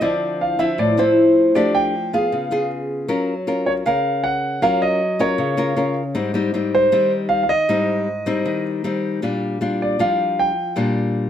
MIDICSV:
0, 0, Header, 1, 3, 480
1, 0, Start_track
1, 0, Tempo, 383877
1, 20, Time_signature, 4, 2, 24, 8
1, 14127, End_track
2, 0, Start_track
2, 0, Title_t, "Grand piano"
2, 0, Program_c, 0, 0
2, 29, Note_on_c, 0, 74, 80
2, 517, Note_on_c, 0, 77, 78
2, 519, Note_off_c, 0, 74, 0
2, 741, Note_on_c, 0, 76, 83
2, 756, Note_off_c, 0, 77, 0
2, 988, Note_off_c, 0, 76, 0
2, 991, Note_on_c, 0, 74, 89
2, 1233, Note_off_c, 0, 74, 0
2, 1239, Note_on_c, 0, 72, 82
2, 1943, Note_on_c, 0, 74, 85
2, 1972, Note_off_c, 0, 72, 0
2, 2183, Note_on_c, 0, 79, 92
2, 2189, Note_off_c, 0, 74, 0
2, 2629, Note_off_c, 0, 79, 0
2, 2673, Note_on_c, 0, 77, 76
2, 3337, Note_off_c, 0, 77, 0
2, 4581, Note_on_c, 0, 73, 82
2, 4643, Note_off_c, 0, 73, 0
2, 4829, Note_on_c, 0, 77, 91
2, 5297, Note_on_c, 0, 78, 89
2, 5319, Note_off_c, 0, 77, 0
2, 5781, Note_on_c, 0, 77, 91
2, 5794, Note_off_c, 0, 78, 0
2, 6026, Note_on_c, 0, 75, 92
2, 6028, Note_off_c, 0, 77, 0
2, 6510, Note_on_c, 0, 73, 85
2, 6518, Note_off_c, 0, 75, 0
2, 7415, Note_off_c, 0, 73, 0
2, 8435, Note_on_c, 0, 72, 92
2, 8875, Note_off_c, 0, 72, 0
2, 9114, Note_on_c, 0, 77, 91
2, 9272, Note_off_c, 0, 77, 0
2, 9290, Note_on_c, 0, 77, 64
2, 9369, Note_on_c, 0, 75, 105
2, 9379, Note_off_c, 0, 77, 0
2, 10764, Note_off_c, 0, 75, 0
2, 12281, Note_on_c, 0, 74, 76
2, 12508, Note_on_c, 0, 77, 81
2, 12518, Note_off_c, 0, 74, 0
2, 12998, Note_off_c, 0, 77, 0
2, 12998, Note_on_c, 0, 79, 83
2, 13436, Note_off_c, 0, 79, 0
2, 14127, End_track
3, 0, Start_track
3, 0, Title_t, "Nylon-string guitar"
3, 0, Program_c, 1, 24
3, 11, Note_on_c, 1, 50, 69
3, 17, Note_on_c, 1, 53, 53
3, 21, Note_on_c, 1, 60, 58
3, 23, Note_on_c, 1, 64, 61
3, 700, Note_off_c, 1, 53, 0
3, 701, Note_off_c, 1, 60, 0
3, 704, Note_off_c, 1, 64, 0
3, 735, Note_on_c, 1, 53, 52
3, 741, Note_on_c, 1, 60, 59
3, 750, Note_on_c, 1, 64, 62
3, 953, Note_off_c, 1, 50, 0
3, 978, Note_on_c, 1, 45, 69
3, 1180, Note_off_c, 1, 53, 0
3, 1184, Note_off_c, 1, 60, 0
3, 1186, Note_off_c, 1, 64, 0
3, 1217, Note_on_c, 1, 53, 55
3, 1226, Note_on_c, 1, 60, 62
3, 1236, Note_on_c, 1, 64, 66
3, 1903, Note_off_c, 1, 53, 0
3, 1904, Note_off_c, 1, 60, 0
3, 1905, Note_off_c, 1, 64, 0
3, 1916, Note_off_c, 1, 45, 0
3, 1937, Note_on_c, 1, 57, 51
3, 1942, Note_on_c, 1, 53, 63
3, 1946, Note_on_c, 1, 62, 57
3, 1954, Note_on_c, 1, 67, 61
3, 2416, Note_off_c, 1, 57, 0
3, 2419, Note_off_c, 1, 62, 0
3, 2425, Note_off_c, 1, 67, 0
3, 2668, Note_on_c, 1, 59, 56
3, 2675, Note_on_c, 1, 65, 51
3, 2678, Note_on_c, 1, 68, 61
3, 2878, Note_off_c, 1, 53, 0
3, 2905, Note_on_c, 1, 49, 68
3, 3107, Note_off_c, 1, 59, 0
3, 3108, Note_off_c, 1, 65, 0
3, 3111, Note_off_c, 1, 68, 0
3, 3138, Note_on_c, 1, 59, 57
3, 3146, Note_on_c, 1, 65, 57
3, 3153, Note_on_c, 1, 68, 60
3, 3821, Note_off_c, 1, 59, 0
3, 3825, Note_off_c, 1, 65, 0
3, 3828, Note_off_c, 1, 68, 0
3, 3839, Note_off_c, 1, 49, 0
3, 3856, Note_on_c, 1, 54, 66
3, 3857, Note_on_c, 1, 61, 54
3, 3861, Note_on_c, 1, 65, 51
3, 3864, Note_on_c, 1, 70, 61
3, 4167, Note_off_c, 1, 61, 0
3, 4171, Note_off_c, 1, 65, 0
3, 4171, Note_off_c, 1, 70, 0
3, 4340, Note_on_c, 1, 61, 52
3, 4345, Note_on_c, 1, 65, 51
3, 4349, Note_on_c, 1, 70, 59
3, 4782, Note_off_c, 1, 61, 0
3, 4785, Note_off_c, 1, 65, 0
3, 4786, Note_off_c, 1, 70, 0
3, 4795, Note_off_c, 1, 54, 0
3, 4821, Note_on_c, 1, 49, 65
3, 4828, Note_on_c, 1, 61, 51
3, 4838, Note_on_c, 1, 70, 58
3, 5745, Note_off_c, 1, 61, 0
3, 5751, Note_off_c, 1, 70, 0
3, 5758, Note_off_c, 1, 49, 0
3, 5778, Note_on_c, 1, 54, 66
3, 5783, Note_on_c, 1, 61, 58
3, 5786, Note_on_c, 1, 65, 53
3, 5789, Note_on_c, 1, 70, 61
3, 6258, Note_off_c, 1, 61, 0
3, 6261, Note_off_c, 1, 65, 0
3, 6261, Note_off_c, 1, 70, 0
3, 6494, Note_on_c, 1, 61, 58
3, 6501, Note_on_c, 1, 65, 62
3, 6505, Note_on_c, 1, 70, 63
3, 6716, Note_off_c, 1, 54, 0
3, 6730, Note_on_c, 1, 49, 71
3, 6940, Note_off_c, 1, 61, 0
3, 6941, Note_off_c, 1, 65, 0
3, 6945, Note_off_c, 1, 70, 0
3, 6967, Note_on_c, 1, 61, 60
3, 6972, Note_on_c, 1, 65, 57
3, 6978, Note_on_c, 1, 70, 71
3, 7176, Note_off_c, 1, 61, 0
3, 7177, Note_off_c, 1, 65, 0
3, 7181, Note_off_c, 1, 70, 0
3, 7208, Note_on_c, 1, 61, 58
3, 7212, Note_on_c, 1, 65, 57
3, 7220, Note_on_c, 1, 70, 54
3, 7524, Note_off_c, 1, 61, 0
3, 7524, Note_off_c, 1, 65, 0
3, 7530, Note_off_c, 1, 70, 0
3, 7671, Note_off_c, 1, 49, 0
3, 7685, Note_on_c, 1, 44, 71
3, 7686, Note_on_c, 1, 55, 52
3, 7687, Note_on_c, 1, 60, 53
3, 7693, Note_on_c, 1, 63, 58
3, 7893, Note_off_c, 1, 55, 0
3, 7897, Note_off_c, 1, 60, 0
3, 7898, Note_off_c, 1, 63, 0
3, 7927, Note_on_c, 1, 55, 60
3, 7936, Note_on_c, 1, 60, 55
3, 7941, Note_on_c, 1, 63, 64
3, 8136, Note_off_c, 1, 55, 0
3, 8140, Note_off_c, 1, 60, 0
3, 8143, Note_off_c, 1, 63, 0
3, 8174, Note_on_c, 1, 55, 50
3, 8179, Note_on_c, 1, 60, 53
3, 8189, Note_on_c, 1, 63, 56
3, 8619, Note_off_c, 1, 55, 0
3, 8622, Note_off_c, 1, 60, 0
3, 8627, Note_off_c, 1, 63, 0
3, 8629, Note_off_c, 1, 44, 0
3, 8651, Note_on_c, 1, 51, 70
3, 8655, Note_on_c, 1, 55, 58
3, 8657, Note_on_c, 1, 60, 54
3, 8665, Note_on_c, 1, 63, 59
3, 9302, Note_off_c, 1, 55, 0
3, 9304, Note_off_c, 1, 60, 0
3, 9307, Note_off_c, 1, 63, 0
3, 9592, Note_off_c, 1, 51, 0
3, 9612, Note_on_c, 1, 44, 68
3, 9616, Note_on_c, 1, 55, 60
3, 9618, Note_on_c, 1, 60, 58
3, 9625, Note_on_c, 1, 63, 62
3, 10094, Note_off_c, 1, 55, 0
3, 10097, Note_off_c, 1, 60, 0
3, 10100, Note_off_c, 1, 63, 0
3, 10329, Note_on_c, 1, 55, 59
3, 10337, Note_on_c, 1, 60, 62
3, 10340, Note_on_c, 1, 63, 62
3, 10553, Note_off_c, 1, 44, 0
3, 10572, Note_on_c, 1, 51, 69
3, 11017, Note_off_c, 1, 55, 0
3, 11018, Note_off_c, 1, 60, 0
3, 11022, Note_off_c, 1, 63, 0
3, 11055, Note_on_c, 1, 55, 54
3, 11062, Note_on_c, 1, 60, 53
3, 11067, Note_on_c, 1, 63, 57
3, 11512, Note_off_c, 1, 51, 0
3, 11518, Note_off_c, 1, 55, 0
3, 11522, Note_off_c, 1, 60, 0
3, 11524, Note_off_c, 1, 63, 0
3, 11530, Note_on_c, 1, 46, 63
3, 11536, Note_on_c, 1, 55, 55
3, 11542, Note_on_c, 1, 62, 50
3, 11542, Note_on_c, 1, 65, 58
3, 11979, Note_off_c, 1, 55, 0
3, 11980, Note_off_c, 1, 62, 0
3, 11983, Note_off_c, 1, 65, 0
3, 12014, Note_on_c, 1, 55, 50
3, 12023, Note_on_c, 1, 65, 60
3, 12024, Note_on_c, 1, 62, 51
3, 12459, Note_off_c, 1, 55, 0
3, 12461, Note_off_c, 1, 62, 0
3, 12463, Note_off_c, 1, 65, 0
3, 12473, Note_off_c, 1, 46, 0
3, 12494, Note_on_c, 1, 53, 62
3, 12497, Note_on_c, 1, 55, 52
3, 12506, Note_on_c, 1, 62, 58
3, 12506, Note_on_c, 1, 65, 65
3, 13143, Note_off_c, 1, 55, 0
3, 13145, Note_off_c, 1, 62, 0
3, 13148, Note_off_c, 1, 65, 0
3, 13434, Note_off_c, 1, 53, 0
3, 13452, Note_on_c, 1, 46, 68
3, 13458, Note_on_c, 1, 55, 58
3, 13459, Note_on_c, 1, 62, 54
3, 13462, Note_on_c, 1, 65, 54
3, 14127, Note_off_c, 1, 46, 0
3, 14127, Note_off_c, 1, 55, 0
3, 14127, Note_off_c, 1, 62, 0
3, 14127, Note_off_c, 1, 65, 0
3, 14127, End_track
0, 0, End_of_file